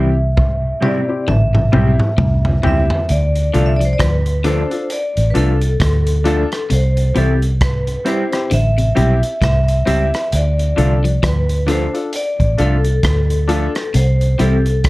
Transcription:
Already playing: C2 E3 C4 E4 G4 E5
0.37 kick, mid tom
0.81 G3 C4 E4 G4 D5, mid tom
1.08 C4 E4 G4
1.28 A1 D3 E5, mid tom
1.54 C3, mid tom
1.72 B1 C3 G3 C4 E4 G4, mid tom
2.00 E4 G4, mid tom
2.18 C2 A2, kick, floor tom
2.45 floor tom
2.63 C#2 G2 G3 C4 E4 G4, floor tom
2.67 E5
2.90 floor tom
3.09 D2 D5, closed hi-hat
3.36 closed hi-hat
3.53 C2 D3 F3 A3 D4 F4 A4, closed hi-hat
3.66 E5
3.76 D5
3.80 F3, closed hi-hat
3.85 C5
3.93 D5
3.99 D2 F3 B4, kick, cross-stick, closed hi-hat
4.26 closed hi-hat
4.44 D3 F3 A3 D4 F4 A4 C5, closed hi-hat
4.70 D4 F4 A4, closed hi-hat
4.90 D5, closed hi-hat
5.17 A1, closed hi-hat
5.30 F3 D4 B4
5.35 C2 A3 D4 F4 A4, closed hi-hat
5.61 F4 A4, closed hi-hat
5.80 D2, kick, cross-stick, closed hi-hat
6.07 closed hi-hat
6.24 F3 A3 D4 F4 A4, closed hi-hat
6.52 cross-stick, closed hi-hat
6.70 C2 C3 C5, closed hi-hat
6.97 closed hi-hat
7.15 C2 E3 G3 C4 E4 G4 A4, closed hi-hat
7.42 closed hi-hat
7.61 B4, kick, cross-stick, closed hi-hat
7.87 closed hi-hat
8.05 G3 C4 E4 G4 C5, closed hi-hat
8.32 C4 E4 G4, cross-stick, closed hi-hat
8.51 A1 D3 E5, closed hi-hat
8.78 C3, closed hi-hat
8.95 B1 C3 G3 C4 E4 G4, closed hi-hat
9.23 E4 G4, closed hi-hat
9.42 C2 A2 E5, kick, cross-stick, closed hi-hat
9.68 closed hi-hat
9.86 C#2 G2 G3 C4 E4 G4 E5, closed hi-hat
10.14 cross-stick, closed hi-hat
10.32 D2 D5, closed hi-hat
10.59 closed hi-hat
10.76 C2 D3 F3 A3 D4 F4 A4, closed hi-hat
11.04 F3, closed hi-hat
11.23 D2 F3 B4, kick, cross-stick, closed hi-hat
11.49 closed hi-hat
11.67 D3 F3 A3 D4 F4 A4, closed hi-hat
11.72 C5
11.93 D4 F4 A4, closed hi-hat
12.13 D5, closed hi-hat
12.40 A1, kick, closed hi-hat
12.58 C2 F3 A3 D4 F4 A4, closed hi-hat
12.62 A4
12.85 F4 A4, closed hi-hat
13.03 D2, kick, cross-stick, closed hi-hat
13.30 closed hi-hat
13.48 F3 A3 D4 F4 A4, closed hi-hat
13.52 A4
13.75 cross-stick, closed hi-hat
13.94 C2 C3 C5, closed hi-hat
14.21 closed hi-hat
14.38 C2 E3 G3 C4 E4 G4 A4, closed hi-hat
14.66 closed hi-hat
14.84 kick, cross-stick, closed hi-hat

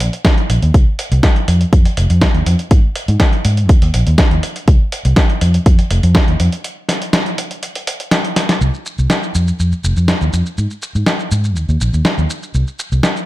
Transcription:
0.00 A#1, open hi-hat
0.13 closed hi-hat
0.25 kick, snare, closed hi-hat
0.38 closed hi-hat
0.50 A#1, open hi-hat
0.62 D#2, closed hi-hat
0.74 kick, closed hi-hat
0.99 open hi-hat
1.12 C2, closed hi-hat
1.23 kick, snare, closed hi-hat
1.36 closed hi-hat
1.48 F2, open hi-hat
1.61 closed hi-hat
1.73 F2, kick, closed hi-hat
1.85 muted fingered electric bass stroke, open hi-hat
1.97 F1, open hi-hat
2.10 F2, closed hi-hat
2.21 kick, snare, closed hi-hat
2.35 D#2, closed hi-hat
2.46 F2, open hi-hat
2.59 closed hi-hat
2.71 G#2, kick, closed hi-hat
2.96 open hi-hat
3.08 G#2, closed hi-hat
3.20 kick, snare, closed hi-hat
3.33 closed hi-hat
3.45 G#2, open hi-hat
3.57 closed hi-hat
3.69 D#2, kick, closed hi-hat
3.82 D#2, open hi-hat
3.94 A#1, open hi-hat
4.07 D#2, closed hi-hat
4.18 kick, snare, closed hi-hat
4.31 D#2, closed hi-hat
4.43 open hi-hat
4.56 closed hi-hat
4.68 C2, kick, closed hi-hat
4.92 open hi-hat
5.05 C2, closed hi-hat
5.16 kick, snare, closed hi-hat
5.30 closed hi-hat
5.41 F2, open hi-hat
5.54 closed hi-hat
5.66 F2, kick, closed hi-hat
5.79 muted fingered electric bass stroke, open hi-hat
5.91 F1, open hi-hat
6.03 F2, closed hi-hat
6.15 kick, snare, closed hi-hat
6.28 D#2, closed hi-hat
6.40 F2, open hi-hat
6.52 closed hi-hat
6.64 closed hi-hat
6.89 snare, open hi-hat
7.02 closed hi-hat
7.13 snare, closed hi-hat
7.26 closed hi-hat
7.38 open hi-hat
7.51 closed hi-hat
7.63 closed hi-hat
7.75 open hi-hat
7.87 open hi-hat
8.00 closed hi-hat
8.11 snare, closed hi-hat
8.25 closed hi-hat
8.36 snare, open hi-hat
8.49 snare, closed hi-hat
8.61 C2, shaker
8.74 shaker
8.86 shaker
8.98 C2, shaker
9.10 snare, shaker
9.23 shaker
9.35 F2, shaker
9.48 shaker
9.60 F2, shaker
9.72 muted fingered electric bass stroke, shaker
9.84 F1, shaker
9.97 F2, shaker
10.08 snare, shaker
10.21 D#2, shaker
10.33 F2, shaker
10.46 shaker
10.58 G#2, shaker
10.71 shaker
10.82 shaker
10.95 G#2, shaker
11.06 snare, shaker
11.20 shaker
11.31 G#2, shaker
11.44 shaker
11.56 D#2, shaker
11.69 D#2, shaker
11.81 A#1, shaker
11.93 D#2, shaker
12.05 snare, shaker
12.18 D#2, shaker
12.30 shaker
12.43 shaker
12.54 C2, shaker
12.67 shaker
12.79 shaker
12.92 C2, shaker
13.03 snare, shaker
13.17 shaker

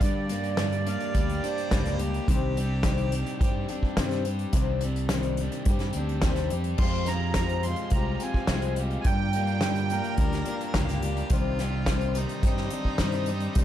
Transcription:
Already playing: G4
0.00 G2 D3 G3 A#3 D4 G4 D5, kick, closed hi-hat
0.28 G3 A#3 D4 G4, closed hi-hat
0.44 closed hi-hat
0.57 G2 D3 G3 A#3 D4 G4, snare, closed hi-hat
0.72 closed hi-hat
0.87 G3 A#3 D4 G4 F5, closed hi-hat
1.00 closed hi-hat
1.15 D2 G3 A#3 D4 G4, kick, closed hi-hat
1.30 closed hi-hat
1.44 G3 A#3 D4 G4 C5, closed hi-hat
1.58 closed hi-hat
1.71 C#2 G2 D3 G3 A#3 D4 G4, kick, snare, closed hi-hat
1.86 snare, closed hi-hat
1.98 G3 A#3 D4 G4, closed hi-hat
2.14 closed hi-hat
2.28 C2 C3 D#3 G3 C4 D4 G4, kick, closed hi-hat
2.55 G3 C4 D4 G4, closed hi-hat
2.83 C3 D#3 G3 C4 D4 G4, kick, snare, closed hi-hat
2.98 closed hi-hat
3.10 G3 C4 D4 G4, closed hi-hat
3.26 closed hi-hat
3.40 G2 G3 C4 D4 G4, kick, closed hi-hat
3.69 G3 C4 D4 G4, closed hi-hat
3.83 kick
3.97 G2 C3 D#3 G3 C4 D4 G4, kick, snare, closed hi-hat
4.11 snare, closed hi-hat
4.25 G3 C4 D4 G4, closed hi-hat
4.39 closed hi-hat
4.53 C2 C3 D#3 G3 C4 D4 G4, kick, closed hi-hat
4.81 C4 D4 G4, closed hi-hat
4.85 G3
4.96 closed hi-hat
5.09 C3 D#3 C4 D4, snare, closed hi-hat
5.13 G3 G4
5.23 closed hi-hat
5.37 D4 G4, closed hi-hat
5.42 G3 C4
5.52 closed hi-hat
5.65 G2 G3 C4, kick, closed hi-hat
5.70 D4 G4
5.79 snare, closed hi-hat
5.93 D2, closed hi-hat
5.97 G3 C4 D4 G4
6.09 closed hi-hat
6.22 D#2 C3 D#3 G3 C4, kick, snare, closed hi-hat
6.26 D4 G4
6.36 snare, closed hi-hat
6.50 F2 C4 D4 G4, closed hi-hat
6.55 G3
6.64 closed hi-hat
6.78 F2 F3 G#3 C4 F4 G4 F5 C6, kick, crash
6.83 F2
7.06 G#3 F4 G4 A#5, snare, closed hi-hat
7.12 C4
7.34 F3 G#3 A#5, kick, snare, closed hi-hat
7.39 C4 F4 G4
7.49 closed hi-hat
7.63 G#3 G4 C6, closed hi-hat
7.67 C4 F4
7.76 closed hi-hat
7.90 C2 G#3 A#5, kick, closed hi-hat
7.95 C4 F4 G4
8.20 F4 G4 G#5, closed hi-hat
8.24 C4
8.34 kick
8.47 C2 F3 G#3 C4 F4, kick, snare, closed hi-hat
8.52 G4
8.62 closed hi-hat
8.76 G4, closed hi-hat
8.81 C4 F4
8.91 closed hi-hat
9.01 G#5, closed hi-hat
9.05 G2 D3 G3 A#3 D4 G4 D5 G5 A#5, kick
9.33 D4 G4, closed hi-hat
9.37 G3 A#3
9.47 closed hi-hat
9.61 G2 D3 G3 A#3 D4 G4, snare, closed hi-hat
9.76 closed hi-hat
9.90 G3 A#3 D4 G4 A#4, closed hi-hat
10.04 closed hi-hat
10.17 D2 G3 A#3 D4, kick, closed hi-hat
10.22 G4
10.33 snare, closed hi-hat
10.46 G3 A#3 D4 G4, closed hi-hat
10.61 closed hi-hat
10.74 C#2 G2 D3 G3 A#3 D4 G4, kick, snare, closed hi-hat
10.89 snare, closed hi-hat
11.02 G3 A#3 D4 G4, closed hi-hat
11.17 closed hi-hat
11.30 C2 C3 D#3 G3 C4 D4 F4 G4 C6, kick, closed hi-hat
11.59 G3 C4 D4 G4, snare, closed hi-hat
11.86 C3 D#3 G3 C4 D4 G4, kick, snare, closed hi-hat
12.01 closed hi-hat
12.15 G3 C4 D4 D#4 G4, closed hi-hat
12.29 closed hi-hat
12.43 G2 G3 C4 D4 D#4 G4, kick, closed hi-hat
12.57 snare
12.70 G3 C4 D4 G4, closed hi-hat
12.85 kick
12.98 G2 C3 D#3 G3 C4 D4 G4, kick, snare, closed hi-hat
13.12 snare, closed hi-hat
13.26 C4 D4 G4, closed hi-hat
13.30 G3
13.40 closed hi-hat
13.55 C2 C3 D#3 G3 C4 D4 G4, kick, closed hi-hat
13.59 D5

